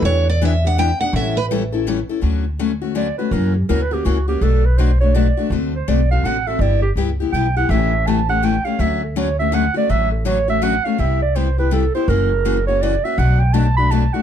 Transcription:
X:1
M:3/4
L:1/16
Q:"Swing" 1/4=164
K:D
V:1 name="Steel-string acoustic guitar"
c2 d2 e2 f2 g2 f2 | e2 B2 z8 | z12 | z12 |
z12 | z12 | z12 | z12 |
z12 | z12 | z12 | z12 |
z12 |]
V:2 name="Clarinet"
z12 | z12 | z8 d2 B2 | ^A2 G2 (3A2 B2 G2 F2 G2 |
A2 B2 =c2 ^c2 d4 | z2 =c2 d2 =f2 ^f2 e2 | d2 G2 z4 g2 f2 | e4 a2 f2 g2 =f2 |
e2 A2 c2 e2 f2 d2 | e2 A2 c2 e2 f2 =f2 | e2 d2 =c2 B2 A2 c2 | ^A6 c2 d2 e2 |
f2 g2 a2 b2 a2 f2 |]
V:3 name="Steel-string acoustic guitar"
[E,B,DG]2 z2 [E,B,DG] z [B,DG]2 [E,B,DG] z [B,DG]2 | [E,G,CEA]2 z2 [E,G,CEA] z [CEA]2 [E,G,CEA] z [CEA]2 | [D,F,A,CF]2 z2 [D,F,A,CF] z [A,CF]2 [D,F,A,CF] z [A,CF]2 | [C,E,^A,CF]2 z2 [C,E,A,CF] z [A,CF]2 [C,E,A,CF] z [A,CF]2 |
[B,,F,A,DF]2 z2 [B,,F,A,DF] z [A,DF]2 [B,,F,A,DF] z [A,DF]2 | [D,A,=CFA]2 z2 [D,A,CFA] z [CFA]2 [D,A,CFA] z [CFA]2 | [G,B,EG]2 z2 [G,B,EG] z [B,EG]2 [G,B,EG] z [B,EG]2 | [C,E,A,CG]2 z2 [C,E,A,CG] z [A,CG]2 [C,E,A,CG] z [A,CG]2 |
[D,F,A,CF]2 z2 [D,F,A,CF] z [A,CF]2 [D,F,A,CF] z [A,CF]2 | [D,F,A,CF]2 z2 [D,F,A,CF] z [A,CF]2 [D,F,A,CF] z [A,CF]2 | [=C,G,B,EG]2 z2 [C,G,B,EG] z [B,EG]2 [C,G,B,EG] z [B,EG]2 | [C,E,^A,CF]2 z2 [C,E,A,CF] z [A,CF]2 [C,E,A,CF] z [A,CF]2 |
[B,,F,A,DF]2 z2 [B,,F,A,DF] z [A,DF]2 [B,,F,A,DF] z [A,DF]2 |]
V:4 name="Upright bass" clef=bass
E,,12 | A,,,12 | D,,12 | F,,4 D,,4 C,,4 |
B,,,12 | D,,4 B,,,4 A,,,4 | G,,,4 C,,4 B,,,4 | A,,,12 |
D,,12 | A,,,12 | =C,,12 | F,,,12 |
B,,,12 |]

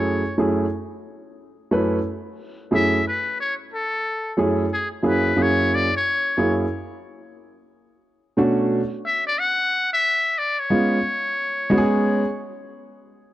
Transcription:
X:1
M:4/4
L:1/16
Q:"Swing 16ths" 1/4=90
K:F#m
V:1 name="Muted trumpet"
c2 z12 z2 | e2 B2 c2 A4 z2 G2 B2 | c2 d c4 z8 z | z6 e d f3 e3 d c- |
c8- c3 z4 z |]
V:2 name="Upright piano"
[F,,A,CEG]2 [F,,A,CEG]2 z6 [F,,A,CEB]2 z4 | [F,,A,CEG]2 z8 [F,,A,CEG]2 z2 [F,,^A,CEG]2 | [F,,^A,CEG]2 z4 [F,,A,CEG]2 z8 | z2 [B,,A,CDF]2 z12 |
[G,B,C^E]2 z4 [G,B,CFG]2 z8 |]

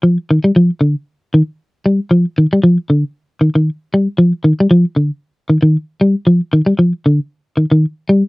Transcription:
X:1
M:4/4
L:1/16
Q:"Swing 16ths" 1/4=116
K:Eblyd
V:1 name="Clean electric guitar" clef=bass
F,2 E, G, F,2 D,2 z2 E, z3 G,2 | F,2 E, G, F,2 D,2 z2 E, E,2 z G,2 | F,2 E, G, F,2 D,2 z2 E, E,2 z G,2 | F,2 E, G, F,2 D,2 z2 E, E,2 z G,2 |]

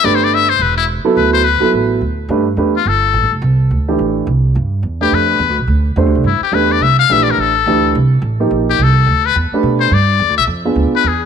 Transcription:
X:1
M:4/4
L:1/8
Q:"Swing" 1/4=212
K:Gmix
V:1 name="Muted trumpet"
(3d c d e c B E z2 | B c B2 z4 | z3 F A3 z | z8 |
z3 G B3 z | z4 E G B d | e f (3e d _B A4 | z4 z G A2- |
A B z3 c d2- | d e z3 B ^G z |]
V:2 name="Grand piano"
[A,DGB]3 z4 [^F,B,EA]- | [^F,B,EA]2 z [F,B,EA]3 z2 | [A,DGB] z [A,DGB] z4 z | z3 [E,A,DG]3 z2 |
z3 [A,DGB]3 z2 | z2 [A,DGc]2 z2 [A,DGB]2 | z2 [E,A,DG]3 z [E,A,DG]2 | z3 [F,_B,_EG]3 z2 |
z3 [A,DGB]3 z2 | z3 [B,DF^G]3 z2 |]
V:3 name="Upright bass" clef=bass
G,,,4 E,,,3 z | D,,3 z A,,,2 D,,2 | G,,2 E,,2 G,,,2 (3A,,, G,,, F,,, | C,,2 D,,2 A,,,2 C,,2 |
G,,2 E,,2 F,,2 (3E,, D,, B,,, | D,,2 (3E,, D,, C,, G,, z E,,2 | C,,2 _B,,,2 A,,,2 D,,2 | C,,2 A,,,2 _B,,,2 C,,2 |
D,,2 E,, z B,,2 G,,2 | (3E,, D,, B,,, F,,2 D,, z E,,2 |]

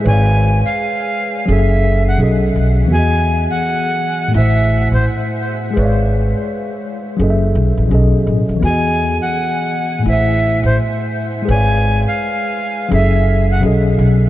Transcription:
X:1
M:4/4
L:1/16
Q:"Swing 16ths" 1/4=84
K:E
V:1 name="Flute"
g3 ^e4- e =e3 f z4 | g3 f4- f e3 =c z4 | z16 | g3 f4- f e3 =c z4 |
g3 ^e4- e =e3 f z4 |]
V:2 name="Tine electric piano"
[G,GBc=d^e]8 [F,CGA=e]4 [B,,F,CGA^d]4 | [E,B,FGd]8 [A,,A,E=ce]8 | [G,GBc=d^e]8 [F,CGA^d=e]4 [B,,F,CGAd]4 | [E,B,FGd]8 [A,,A,E=ce]8 |
[G,GBc=d^e]8 [F,CGA=e]4 [B,,F,CGA^d]4 |]
V:3 name="Upright bass" clef=bass
G,,,3 z4 z F,,,4 B,,,2 B,,,2 | E,,3 z4 z A,,,3 A,,, z4 | G,,,3 z4 z F,,,2 B,,, A,,, B,,, z A,,, B,,, | E,,3 z4 z A,,,3 A,,, z4 |
G,,,3 z4 z F,,,4 B,,,2 B,,,2 |]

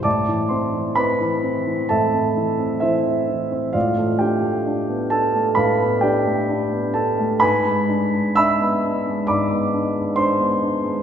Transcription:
X:1
M:4/4
L:1/16
Q:1/4=66
K:Am
V:1 name="Grand piano"
[dad']2 [cc']2 [Bb]4 [Aea]4 [Ece]4 | [Fdf]2 [Gg]4 [Aa]2 [Bfb]2 [Gdg]4 [Aa]2 | [B^gb]4 [ebe']4 [dbd']4 [cc']4 |]
V:2 name="Grand piano"
A,, E, C E, C E, C E, A,, C E, C E, C E, C | A,, A, D A, D B, D A, A,, B, D A, D B, D A, | ^G,, ^G, D G, D B, D G, G,, B, D G, D B, D G, |]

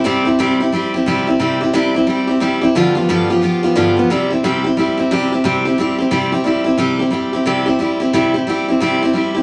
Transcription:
X:1
M:4/4
L:1/8
Q:"Swing" 1/4=178
K:C
V:1 name="Steel-string acoustic guitar"
[C,G,CEG] [CEG] [C,G,CEG] [CEG] [G,CEG] [CEG] [C,G,CEG] [CEG] | [C,G,CEG] [CEG] [C,G,CEG] [CEG] [G,CEG] [CEG] [C,G,CEG] [CEG] | [G,,D,F,B,FG] [F,B,FG] [G,,D,F,B,FG] [F,B,FG] [F,B,FG] [F,B,FG] [G,,D,F,B,FG] [F,B,FG] | [C,G,CEG] [CEG] [C,G,CEG] [CEG] [G,CEG] [CEG] [C,G,CEG] [CEG] |
[C,G,CEG] [CEG] [G,CEG] [CEG] [C,G,CEG] [CEG] [G,CEG] [CEG] | [C,G,CEG] [CEG] [G,CEG] [CEG] [C,G,CEG] [CEG] [G,CEG] [CEG] | [C,G,CEG] [CEG] [G,CEG] [CEG] [C,G,CEG] [CEG] [G,CEG] [CEG] |]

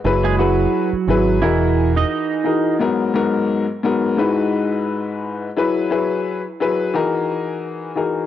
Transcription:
X:1
M:4/4
L:1/16
Q:"Swing 16ths" 1/4=87
K:Elyd
V:1 name="Upright piano"
[F,EGB]2 [F,EGB]2 z2 [F,EGB]2 [E,FGAd]6 [E,DFGA]2 | [G,,F,B,A]2 [G,,F,B,A]2 z2 [G,,F,B,A]2 [G,,G,DEFB]8 | [F,EGB]2 [F,EGB]2 z2 [F,EGB]2 [E,DFGA]6 [E,DFGA]2 |]
V:2 name="Clean electric guitar"
z [G,G] [F,F]6 [E,E]3 [Dd]4- [Dd] | z16 | z16 |]
V:3 name="Fingered electric bass" clef=bass
F,,,4 z2 G,,,2 E,,,4 z4 | z16 | z16 |]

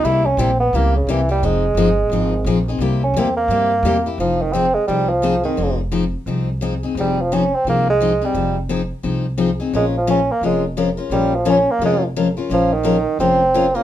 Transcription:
X:1
M:4/4
L:1/16
Q:"Swing" 1/4=173
K:Fm
V:1 name="Steel-string acoustic guitar"
[C,G,B,=EG]2 z2 [C,G,B,EG] z3 [C,G,B,EG]2 z2 [C,G,B,EG] z [B,EG]2 | [F,CEA]2 z2 [F,CEA] z3 [F,CEA]2 z2 [F,CEA] z [CEA]2 | [C,G,B,=EG]2 z2 [C,G,B,EG] z3 [C,G,B,EG]2 z2 [C,G,B,EG] z [B,EG]2 | [F,CEA]2 z2 [F,CEA] z3 [F,CEA]2 z2 [F,CEA] z [CEA]2 |
[F,CEA]2 z2 [F,CEA] z3 [F,CEA]2 z2 [F,CEA] z [CEA]2 | [F,CEA]2 z2 [F,CEA] z3 [F,CEA]2 z2 [F,CEA] z [CEA]2 | [F,CEA]2 z2 [F,CEA] z3 [F,CEA]2 z2 [F,CEA] z [CEA]2 | [F,A,DFB]2 z2 [F,A,DFB] z3 [F,A,DFB]2 z2 [F,A,DFB] z [DFB]2 |
[F,A,DFB]2 z2 [F,A,DFB] z3 [F,A,DFB]2 z2 [F,A,DFB] z [DFB]2 | [F,A,DFB]2 z2 [F,A,DFB] z3 [F,A,DFB]2 z2 [F,A,DFB] z [DFB]2 |]
V:2 name="Bassoon" clef=bass
=E2 D2 C2 =B,2 _B,2 D,2 =E,2 G,2 | A,12 z4 | z2 D2 C2 B,8- B, z | F,2 E,2 C2 A,2 G,2 F,4 E,2- |
E,2 z12 z2 | G,2 F,2 D2 C2 B,2 A,4 G,2- | G,2 z12 z2 | A,2 F,2 D2 B,2 A,2 z6 |
G,2 F,2 D2 B,2 A,2 z6 | F,2 E,6 C6 B,2 |]
V:3 name="Upright bass" clef=bass
C,,4 B,,,4 D,,4 C,,4 | F,,,4 G,,,4 A,,,4 B,,,4 | C,,4 =E,,4 G,,4 E,,4 | F,,,8 C,,8 |
F,,,8 C,,8 | F,,,8 C,,8 | F,,,8 C,,8 | B,,,8 F,,,8 |
B,,,8 F,,,8 | B,,,8 F,,,8 |]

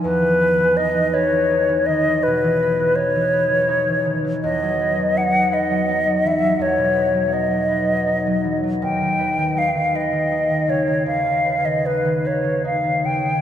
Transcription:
X:1
M:12/8
L:1/16
Q:3/8=54
K:D#phr
V:1 name="Flute"
B4 d2 c4 d2 B4 c8 | d4 f2 d4 e2 c4 d6- d z | =g4 ^e2 d4 c2 e3 d B2 c2 e2 g2 |]
V:2 name="Harp" clef=bass
[E,,D] E, B E, D E, B E, D E, D, E, B,, E, B E, D E, B E, D E, D, E, | E,, F, B F, D F, B F, D F, E, F, E,, B,, B F, D F, B F, D F, E, F, | D,, D, B D, D D, B D, D D, C, D, D,, C, B D, D D, B D, D D, C, D, |]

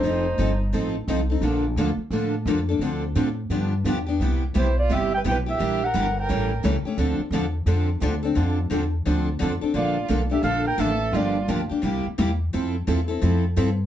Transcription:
X:1
M:4/4
L:1/16
Q:"Swing" 1/4=173
K:Bblyd
V:1 name="Clarinet"
c6 z8 z2 | z16 | z16 | z4 c2 d2 e2 g2 g2 e2- |
e2 ^f4 g6 z4 | z16 | z16 | d4 z2 e2 f2 g2 e4 |
d4 z12 | z16 |]
V:2 name="Violin"
_E6 z8 z2 | z16 | z16 | z4 E2 F2 G2 =B2 B2 G2- |
G2 B4 B6 z4 | z16 | z16 | F4 z2 G2 A2 B2 A4 |
F4 z12 | z16 |]
V:3 name="Steel-string acoustic guitar"
[F,C_EA]2 z2 [F,CEA] z3 [F,CEA]2 z2 [F,CEA] z [CEA]2 | [D,F,B,DA]2 z2 [D,F,B,DA] z3 [D,F,B,DA]2 z2 [D,F,B,DA] z [B,DA]2 | [D,F,CDA]2 z2 [D,F,CDA] z3 [D,F,=B,DG]2 z2 [D,F,B,DG] z [B,DG]2 | [C,G,=B,EG]2 z2 [C,G,B,EG] z3 [C,G,B,EG]2 z2 [C,G,B,EG] z [B,EG]2 |
[E,B,DG]2 z2 [E,B,DG] z3 [^C,E,A,^CG]2 z2 [C,E,A,CG] z [A,CG]2 | [D,F,CDA]2 z2 [D,F,CDA] z3 [D,F,CDA]2 z2 [D,F,CDA] z [CDA]2 | [D,F,CDA]2 z2 [D,F,CDA] z3 [D,F,CDA]2 z2 [D,F,CDA] z [CDA]2 | [D,F,B,DA]2 z2 [D,F,B,DA] z [B,DA]2 [D,F,B,DA]2 z2 [D,F,B,DA] z3 |
[D,F,B,DG]2 z2 [D,F,B,DG] z [B,DG]2 [C,G,B,EG]2 z2 [C,G,B,EG] z3 | [F,CEA]2 z2 [F,CEA] z [CEA]2 [F,CEA]2 z2 [F,CEA] z3 |]
V:4 name="Steel-string acoustic guitar"
[F,C_EA]2 z2 [F,CEA] z3 [F,CEA]2 z2 [F,CEA] z3 | [D,F,B,DA]2 z2 [D,F,B,DA] z3 [D,F,B,DA]2 z2 [D,F,B,DA] z3 | [D,F,CDA]2 z2 [D,F,CDA] z3 [D,F,=B,DG]2 z2 [D,F,B,DG] z3 | [C,G,=B,EG]2 z2 [C,G,B,EG] z3 [C,G,B,EG]2 z2 [C,G,B,EG] z3 |
[E,G,DEB]2 z2 [E,G,DEB] z3 [E,G,^CEA]2 z2 [E,G,CEA] z3 | [D,F,CDA]2 z2 [D,F,CDA] z3 [D,F,CDA]2 z2 [D,F,CDA] z3 | [D,F,CDA]2 z2 [D,F,CDA] z3 [D,F,CDA]2 z2 [D,F,CDA] z3 | [D,F,B,DA]2 z2 [D,F,B,DA] z3 [D,F,B,DA]2 z2 [D,F,B,DA] z3 |
[D,F,B,DG]2 z2 [D,F,B,DG] z3 [C,G,B,EG]2 z2 [C,G,B,EG] z3 | [F,CEA]2 z2 [F,CEA] z3 [F,CEA]2 z2 [F,CEA] z3 |]
V:5 name="Upright bass" clef=bass
F,,,4 G,,,4 A,,,4 C,,4 | B,,,4 D,,2 z2 A,,4 F,,4 | D,,4 A,,4 G,,4 E,,4 | C,,4 =B,,,4 G,,,4 B,,,4 |
B,,,4 G,,,4 A,,,4 ^C,,2 z2 | D,,2 z2 E,,4 F,,4 D,,4 | F,,4 E,,4 D,,4 F,,2 z2 | B,,,4 =B,,,4 _B,,,4 A,,,4 |
G,,,4 D,,2 z2 C,,2 z2 E,,4 | F,,4 E,,4 F,,4 G,,4 |]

